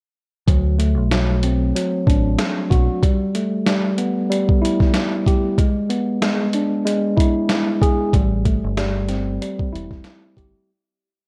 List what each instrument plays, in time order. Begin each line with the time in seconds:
0.47 fingered electric bass D2, tine electric piano F#3, kick, closed hi-hat
0.79 tine electric piano A3, closed hi-hat
0.98 fingered electric bass B1
1.11 tine electric piano F#3, snare, closed hi-hat
1.43 tine electric piano C4, closed hi-hat
1.76 tine electric piano F#3, closed hi-hat
2.07 fingered electric bass A1, tine electric piano D4, kick, closed hi-hat
2.39 snare, closed hi-hat
2.70 fingered electric bass B1, tine electric piano F#4, kick, closed hi-hat
3.03 tine electric piano G3, kick, closed hi-hat
3.35 tine electric piano A3, closed hi-hat
3.66 tine electric piano G3, snare, closed hi-hat
3.98 tine electric piano B3, closed hi-hat
4.30 tine electric piano G3, closed hi-hat
4.49 kick
4.62 tine electric piano E4, closed hi-hat
4.80 kick, snare
4.94 snare, closed hi-hat
5.26 tine electric piano G4, kick, closed hi-hat
5.58 tine electric piano G#3, kick, closed hi-hat
5.90 tine electric piano B3, closed hi-hat
6.22 tine electric piano G#3, snare, closed hi-hat
6.53 tine electric piano D4, closed hi-hat
6.85 tine electric piano G#3, closed hi-hat
7.17 tine electric piano E4, kick, closed hi-hat
7.49 snare, closed hi-hat
7.82 tine electric piano G#4, kick, closed hi-hat
8.13 fingered electric bass A1, tine electric piano G3, kick, closed hi-hat
8.45 tine electric piano A3, kick, closed hi-hat
8.64 fingered electric bass G1
8.77 tine electric piano G3, snare, closed hi-hat
9.08 tine electric piano C4, snare, closed hi-hat
9.41 tine electric piano G3, closed hi-hat
9.59 kick
9.73 fingered electric bass E1, tine electric piano E4, closed hi-hat
9.91 kick, snare
10.04 snare, closed hi-hat
10.37 fingered electric bass G1, tine electric piano G4, kick, closed hi-hat